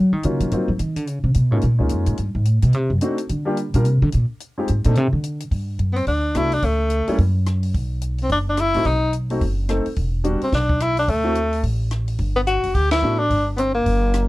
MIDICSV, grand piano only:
0, 0, Header, 1, 2, 480
1, 0, Start_track
1, 0, Tempo, 278164
1, 1843, Time_signature, 4, 2, 24, 8
1, 24645, End_track
2, 0, Start_track
2, 0, Title_t, "Grand piano"
2, 0, Program_c, 0, 0
2, 410, Note_on_c, 0, 54, 53
2, 421, Note_on_c, 0, 58, 52
2, 424, Note_on_c, 0, 61, 52
2, 426, Note_on_c, 0, 63, 50
2, 432, Note_on_c, 0, 65, 62
2, 866, Note_off_c, 0, 54, 0
2, 872, Note_off_c, 0, 58, 0
2, 875, Note_off_c, 0, 61, 0
2, 876, Note_off_c, 0, 63, 0
2, 879, Note_off_c, 0, 65, 0
2, 892, Note_on_c, 0, 54, 53
2, 898, Note_on_c, 0, 58, 47
2, 903, Note_on_c, 0, 60, 50
2, 909, Note_on_c, 0, 63, 47
2, 918, Note_on_c, 0, 65, 57
2, 1150, Note_off_c, 0, 54, 0
2, 1153, Note_off_c, 0, 58, 0
2, 1155, Note_off_c, 0, 60, 0
2, 1159, Note_off_c, 0, 63, 0
2, 1163, Note_off_c, 0, 65, 0
2, 2606, Note_on_c, 0, 56, 55
2, 2616, Note_on_c, 0, 58, 53
2, 2619, Note_on_c, 0, 61, 52
2, 2622, Note_on_c, 0, 63, 53
2, 2630, Note_on_c, 0, 65, 61
2, 2779, Note_off_c, 0, 56, 0
2, 2784, Note_off_c, 0, 58, 0
2, 2785, Note_off_c, 0, 61, 0
2, 2787, Note_off_c, 0, 63, 0
2, 2791, Note_off_c, 0, 65, 0
2, 3083, Note_on_c, 0, 56, 55
2, 3086, Note_on_c, 0, 61, 47
2, 3089, Note_on_c, 0, 58, 50
2, 3095, Note_on_c, 0, 63, 50
2, 3103, Note_on_c, 0, 65, 58
2, 3717, Note_off_c, 0, 56, 0
2, 3719, Note_off_c, 0, 61, 0
2, 3720, Note_off_c, 0, 58, 0
2, 3724, Note_off_c, 0, 63, 0
2, 3727, Note_off_c, 0, 65, 0
2, 5205, Note_on_c, 0, 57, 59
2, 5206, Note_on_c, 0, 60, 53
2, 5209, Note_on_c, 0, 62, 55
2, 5209, Note_on_c, 0, 63, 50
2, 5222, Note_on_c, 0, 66, 65
2, 5462, Note_off_c, 0, 57, 0
2, 5463, Note_off_c, 0, 60, 0
2, 5464, Note_off_c, 0, 62, 0
2, 5465, Note_off_c, 0, 63, 0
2, 5471, Note_off_c, 0, 66, 0
2, 5959, Note_on_c, 0, 55, 64
2, 5965, Note_on_c, 0, 58, 58
2, 5971, Note_on_c, 0, 62, 59
2, 5981, Note_on_c, 0, 65, 61
2, 5982, Note_on_c, 0, 67, 72
2, 6132, Note_off_c, 0, 55, 0
2, 6135, Note_off_c, 0, 58, 0
2, 6138, Note_off_c, 0, 62, 0
2, 6143, Note_off_c, 0, 65, 0
2, 6144, Note_off_c, 0, 67, 0
2, 6470, Note_on_c, 0, 55, 63
2, 6473, Note_on_c, 0, 62, 56
2, 6475, Note_on_c, 0, 65, 54
2, 6476, Note_on_c, 0, 58, 55
2, 6486, Note_on_c, 0, 70, 69
2, 6627, Note_off_c, 0, 55, 0
2, 6628, Note_off_c, 0, 62, 0
2, 6630, Note_off_c, 0, 58, 0
2, 6630, Note_off_c, 0, 65, 0
2, 6635, Note_off_c, 0, 70, 0
2, 7897, Note_on_c, 0, 60, 54
2, 7898, Note_on_c, 0, 56, 61
2, 7900, Note_on_c, 0, 63, 54
2, 7914, Note_on_c, 0, 65, 52
2, 7915, Note_on_c, 0, 67, 65
2, 8059, Note_off_c, 0, 56, 0
2, 8059, Note_off_c, 0, 60, 0
2, 8060, Note_off_c, 0, 63, 0
2, 8067, Note_off_c, 0, 65, 0
2, 8068, Note_off_c, 0, 67, 0
2, 8368, Note_on_c, 0, 57, 59
2, 8377, Note_on_c, 0, 60, 56
2, 8381, Note_on_c, 0, 62, 58
2, 8386, Note_on_c, 0, 63, 55
2, 8392, Note_on_c, 0, 69, 70
2, 8534, Note_off_c, 0, 57, 0
2, 8538, Note_off_c, 0, 60, 0
2, 8540, Note_off_c, 0, 62, 0
2, 8543, Note_off_c, 0, 63, 0
2, 8546, Note_off_c, 0, 69, 0
2, 10956, Note_on_c, 0, 57, 56
2, 10959, Note_on_c, 0, 59, 52
2, 10966, Note_on_c, 0, 66, 60
2, 10967, Note_on_c, 0, 62, 54
2, 11215, Note_off_c, 0, 57, 0
2, 11216, Note_off_c, 0, 59, 0
2, 11220, Note_off_c, 0, 62, 0
2, 11220, Note_off_c, 0, 66, 0
2, 12213, Note_on_c, 0, 55, 67
2, 12223, Note_on_c, 0, 58, 60
2, 12232, Note_on_c, 0, 61, 64
2, 12236, Note_on_c, 0, 64, 72
2, 12377, Note_off_c, 0, 55, 0
2, 12382, Note_off_c, 0, 58, 0
2, 12386, Note_off_c, 0, 61, 0
2, 12389, Note_off_c, 0, 64, 0
2, 15091, Note_on_c, 0, 57, 58
2, 15103, Note_on_c, 0, 60, 53
2, 15106, Note_on_c, 0, 63, 56
2, 15112, Note_on_c, 0, 66, 66
2, 15257, Note_off_c, 0, 57, 0
2, 15263, Note_off_c, 0, 60, 0
2, 15265, Note_off_c, 0, 63, 0
2, 15267, Note_off_c, 0, 66, 0
2, 16054, Note_on_c, 0, 57, 65
2, 16059, Note_on_c, 0, 60, 58
2, 16066, Note_on_c, 0, 63, 58
2, 16071, Note_on_c, 0, 66, 66
2, 16219, Note_off_c, 0, 57, 0
2, 16222, Note_off_c, 0, 60, 0
2, 16225, Note_off_c, 0, 63, 0
2, 16228, Note_off_c, 0, 66, 0
2, 16715, Note_on_c, 0, 57, 60
2, 16725, Note_on_c, 0, 60, 55
2, 16727, Note_on_c, 0, 63, 55
2, 16733, Note_on_c, 0, 69, 68
2, 16977, Note_off_c, 0, 57, 0
2, 16982, Note_off_c, 0, 60, 0
2, 16983, Note_off_c, 0, 63, 0
2, 16986, Note_off_c, 0, 69, 0
2, 17667, Note_on_c, 0, 55, 65
2, 17673, Note_on_c, 0, 59, 57
2, 17674, Note_on_c, 0, 62, 61
2, 17674, Note_on_c, 0, 66, 73
2, 17933, Note_off_c, 0, 55, 0
2, 17936, Note_off_c, 0, 59, 0
2, 17937, Note_off_c, 0, 62, 0
2, 17937, Note_off_c, 0, 66, 0
2, 19392, Note_on_c, 0, 57, 70
2, 19399, Note_on_c, 0, 60, 57
2, 19405, Note_on_c, 0, 64, 61
2, 19409, Note_on_c, 0, 66, 72
2, 19569, Note_off_c, 0, 57, 0
2, 19573, Note_off_c, 0, 60, 0
2, 19576, Note_off_c, 0, 64, 0
2, 19578, Note_off_c, 0, 66, 0
2, 22479, Note_on_c, 0, 57, 57
2, 22484, Note_on_c, 0, 59, 52
2, 22493, Note_on_c, 0, 62, 53
2, 22495, Note_on_c, 0, 66, 62
2, 22742, Note_off_c, 0, 57, 0
2, 22744, Note_off_c, 0, 59, 0
2, 22749, Note_off_c, 0, 62, 0
2, 22750, Note_off_c, 0, 66, 0
2, 24645, End_track
0, 0, End_of_file